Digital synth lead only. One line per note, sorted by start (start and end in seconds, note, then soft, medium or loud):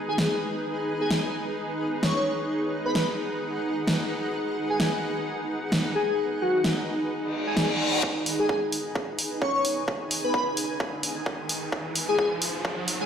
0.09 0.15 G#4 medium
0.19 0.27 G#4 medium
1.01 1.07 G#4 medium
1.11 1.19 G#4 medium
2.03 2.12 C#5 medium
2.16 2.23 C#5 medium
2.86 2.92 B4 medium
2.95 3.04 B4 medium
4.70 4.76 G#4 medium
4.80 4.89 G#4 medium
5.95 6.04 G#4 medium
6.09 6.15 G#4 medium
6.42 6.59 F#4 medium
7.47 7.53 G#4 medium
7.57 7.65 G#4 medium
8.39 8.46 G#4 medium
8.49 8.58 G#4 medium
9.42 9.50 C#5 medium
9.55 9.61 C#5 medium
10.24 10.30 B4 medium
10.34 10.42 B4 medium
12.09 12.15 G#4 medium
12.19 12.27 G#4 medium
13.01 13.06 G#4 medium